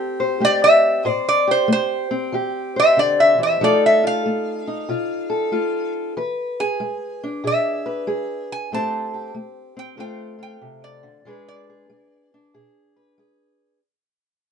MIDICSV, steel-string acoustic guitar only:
0, 0, Header, 1, 2, 480
1, 0, Start_track
1, 0, Key_signature, 0, "minor"
1, 0, Tempo, 637620
1, 793, Time_signature, 4, 2, 24, 8
1, 10930, End_track
2, 0, Start_track
2, 0, Title_t, "Steel-string acoustic guitar"
2, 0, Program_c, 0, 25
2, 0, Note_on_c, 0, 52, 60
2, 0, Note_on_c, 0, 60, 58
2, 0, Note_on_c, 0, 67, 59
2, 149, Note_on_c, 0, 72, 64
2, 283, Note_off_c, 0, 52, 0
2, 302, Note_off_c, 0, 67, 0
2, 303, Note_on_c, 0, 57, 60
2, 311, Note_on_c, 0, 67, 60
2, 756, Note_off_c, 0, 57, 0
2, 773, Note_off_c, 0, 67, 0
2, 790, Note_on_c, 0, 45, 73
2, 793, Note_off_c, 0, 72, 0
2, 796, Note_on_c, 0, 72, 73
2, 1110, Note_on_c, 0, 67, 57
2, 1239, Note_off_c, 0, 45, 0
2, 1264, Note_on_c, 0, 57, 72
2, 1584, Note_off_c, 0, 60, 0
2, 1587, Note_on_c, 0, 60, 56
2, 1717, Note_off_c, 0, 57, 0
2, 1750, Note_on_c, 0, 52, 65
2, 1753, Note_off_c, 0, 67, 0
2, 1762, Note_on_c, 0, 67, 60
2, 2071, Note_off_c, 0, 72, 0
2, 2079, Note_on_c, 0, 72, 64
2, 2200, Note_off_c, 0, 52, 0
2, 2235, Note_on_c, 0, 50, 62
2, 2543, Note_off_c, 0, 50, 0
2, 2546, Note_on_c, 0, 52, 57
2, 2701, Note_off_c, 0, 67, 0
2, 2702, Note_off_c, 0, 72, 0
2, 2715, Note_off_c, 0, 52, 0
2, 2716, Note_off_c, 0, 60, 0
2, 2718, Note_on_c, 0, 53, 75
2, 2718, Note_on_c, 0, 57, 62
2, 2724, Note_on_c, 0, 63, 58
2, 2732, Note_on_c, 0, 65, 62
2, 2736, Note_on_c, 0, 69, 66
2, 3026, Note_off_c, 0, 65, 0
2, 3035, Note_on_c, 0, 65, 56
2, 3165, Note_off_c, 0, 53, 0
2, 3195, Note_off_c, 0, 57, 0
2, 3204, Note_on_c, 0, 57, 64
2, 3510, Note_off_c, 0, 63, 0
2, 3519, Note_on_c, 0, 63, 56
2, 3649, Note_off_c, 0, 57, 0
2, 3673, Note_off_c, 0, 65, 0
2, 3679, Note_on_c, 0, 48, 68
2, 3684, Note_on_c, 0, 65, 61
2, 3978, Note_off_c, 0, 69, 0
2, 3987, Note_on_c, 0, 69, 64
2, 4126, Note_off_c, 0, 48, 0
2, 4148, Note_off_c, 0, 65, 0
2, 4153, Note_on_c, 0, 57, 59
2, 4157, Note_on_c, 0, 65, 62
2, 4604, Note_off_c, 0, 57, 0
2, 4618, Note_off_c, 0, 65, 0
2, 4623, Note_off_c, 0, 63, 0
2, 4637, Note_off_c, 0, 69, 0
2, 4643, Note_on_c, 0, 52, 77
2, 4647, Note_on_c, 0, 71, 71
2, 4970, Note_on_c, 0, 68, 49
2, 5088, Note_off_c, 0, 52, 0
2, 5119, Note_on_c, 0, 56, 71
2, 5446, Note_on_c, 0, 62, 61
2, 5566, Note_off_c, 0, 56, 0
2, 5595, Note_off_c, 0, 68, 0
2, 5598, Note_on_c, 0, 47, 70
2, 5604, Note_on_c, 0, 68, 57
2, 5906, Note_off_c, 0, 71, 0
2, 5915, Note_on_c, 0, 71, 71
2, 6046, Note_off_c, 0, 47, 0
2, 6070, Note_off_c, 0, 68, 0
2, 6076, Note_on_c, 0, 56, 69
2, 6079, Note_on_c, 0, 68, 59
2, 6525, Note_off_c, 0, 56, 0
2, 6540, Note_off_c, 0, 68, 0
2, 6541, Note_off_c, 0, 71, 0
2, 6546, Note_off_c, 0, 62, 0
2, 6563, Note_on_c, 0, 45, 72
2, 6570, Note_on_c, 0, 57, 63
2, 6574, Note_on_c, 0, 60, 67
2, 6579, Note_on_c, 0, 67, 59
2, 6587, Note_on_c, 0, 72, 72
2, 6872, Note_off_c, 0, 67, 0
2, 6881, Note_on_c, 0, 67, 56
2, 7008, Note_off_c, 0, 45, 0
2, 7026, Note_off_c, 0, 57, 0
2, 7035, Note_on_c, 0, 57, 73
2, 7343, Note_off_c, 0, 60, 0
2, 7352, Note_on_c, 0, 60, 62
2, 7484, Note_off_c, 0, 57, 0
2, 7503, Note_off_c, 0, 67, 0
2, 7506, Note_on_c, 0, 50, 71
2, 7507, Note_off_c, 0, 60, 0
2, 7510, Note_on_c, 0, 57, 66
2, 7513, Note_off_c, 0, 72, 0
2, 7516, Note_on_c, 0, 60, 62
2, 7520, Note_on_c, 0, 65, 63
2, 7526, Note_on_c, 0, 72, 67
2, 7810, Note_off_c, 0, 65, 0
2, 7819, Note_on_c, 0, 65, 58
2, 7959, Note_off_c, 0, 50, 0
2, 7990, Note_on_c, 0, 48, 66
2, 8303, Note_on_c, 0, 50, 67
2, 8308, Note_off_c, 0, 48, 0
2, 8451, Note_off_c, 0, 65, 0
2, 8454, Note_off_c, 0, 57, 0
2, 8461, Note_off_c, 0, 72, 0
2, 8468, Note_off_c, 0, 50, 0
2, 8471, Note_on_c, 0, 52, 79
2, 8477, Note_off_c, 0, 60, 0
2, 8478, Note_on_c, 0, 56, 63
2, 8484, Note_on_c, 0, 62, 70
2, 8488, Note_on_c, 0, 68, 67
2, 8495, Note_on_c, 0, 71, 75
2, 8795, Note_off_c, 0, 68, 0
2, 8803, Note_on_c, 0, 68, 54
2, 8921, Note_off_c, 0, 52, 0
2, 8946, Note_off_c, 0, 56, 0
2, 8955, Note_on_c, 0, 56, 72
2, 9274, Note_off_c, 0, 62, 0
2, 9289, Note_on_c, 0, 62, 61
2, 9402, Note_off_c, 0, 56, 0
2, 9435, Note_off_c, 0, 68, 0
2, 9441, Note_on_c, 0, 47, 67
2, 9444, Note_on_c, 0, 68, 68
2, 9751, Note_off_c, 0, 71, 0
2, 9760, Note_on_c, 0, 71, 69
2, 9885, Note_off_c, 0, 47, 0
2, 9919, Note_off_c, 0, 68, 0
2, 9920, Note_on_c, 0, 56, 67
2, 9930, Note_on_c, 0, 68, 62
2, 10364, Note_off_c, 0, 56, 0
2, 10380, Note_off_c, 0, 71, 0
2, 10382, Note_off_c, 0, 68, 0
2, 10384, Note_off_c, 0, 62, 0
2, 10930, End_track
0, 0, End_of_file